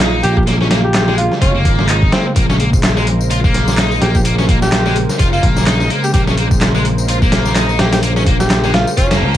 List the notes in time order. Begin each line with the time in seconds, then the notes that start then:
Already playing: A#1 C#3 G#3 A#3 F4
0.00 D#4, snare, clap, closed hi-hat
0.23 A#1 A#3 G4, closed hi-hat
0.37 G4, kick
0.47 A#3, snare, closed hi-hat
0.61 C#4, snare
0.71 A#3, snare, closed hi-hat
0.84 G4
0.94 snare, clap, closed hi-hat
1.08 G#3, snare
1.17 F4, closed hi-hat
1.32 snare
1.41 F1 C#4 F4, kick, closed hi-hat
1.55 A#3
1.65 G#1, kick, closed hi-hat
1.79 snare
1.89 D#4, clap, closed hi-hat
2.02 kick
2.12 A#3 C4, snare, closed hi-hat
2.26 C4
2.36 A#1 A#3 A#4 C5, kick, closed hi-hat, tambourine
2.50 C#4, snare, tambourine
2.60 A#3, closed hi-hat
2.73 kick, tambourine
2.83 snare, clap, closed hi-hat, tambourine
2.97 G#3, snare, tambourine
3.07 closed hi-hat
3.21 tambourine
3.31 F4, closed hi-hat, tambourine
3.44 A#3, kick, tambourine
3.54 snare, closed hi-hat
3.68 snare, tambourine
3.78 D#4, snare, clap, closed hi-hat, tambourine
3.91 tambourine
4.01 A#1 A#3 G4, snare, closed hi-hat
4.15 G4, kick, tambourine
4.25 A#3, closed hi-hat, tambourine
4.39 C#4, snare, tambourine
4.49 A#3, kick, closed hi-hat
4.62 G4, snare, tambourine
4.72 snare, clap, closed hi-hat, tambourine
4.86 G#3, snare, tambourine
4.96 closed hi-hat
5.09 snare, tambourine
5.19 F1 F4, kick, closed hi-hat, tambourine
5.33 A#3 F4, tambourine
5.43 A#1, kick, closed hi-hat
5.57 snare, tambourine
5.67 D#4, snare, clap, closed hi-hat, tambourine
5.80 snare, tambourine
5.90 A#3, closed hi-hat
6.04 G4, tambourine
6.13 A#1 A#3 G4, kick, closed hi-hat, tambourine
6.27 C#4, snare, tambourine
6.37 A#3, closed hi-hat
6.51 kick, tambourine
6.61 snare, clap, closed hi-hat, tambourine
6.75 G#3, snare, tambourine
6.85 closed hi-hat
6.98 tambourine
7.08 F4, closed hi-hat, tambourine
7.22 A#3, kick, tambourine
7.32 snare, closed hi-hat
7.45 snare, tambourine
7.55 D#4, snare, clap, closed hi-hat, tambourine
7.69 tambourine
7.79 A#1 A#3 G4, snare, closed hi-hat
7.93 G4, snare, closed hi-hat, tambourine
8.03 A#3, closed hi-hat, tambourine
8.16 C#4, snare, tambourine
8.26 A#3, kick, closed hi-hat
8.40 G4, snare, tambourine
8.50 snare, clap, closed hi-hat, tambourine
8.64 G#3, snare, tambourine
8.74 F4, snare, closed hi-hat
8.87 tambourine
8.97 F1 C#4 F4, kick, closed hi-hat, tambourine, reverse cymbal
9.11 A#3, snare, closed hi-hat, tambourine
9.21 C#2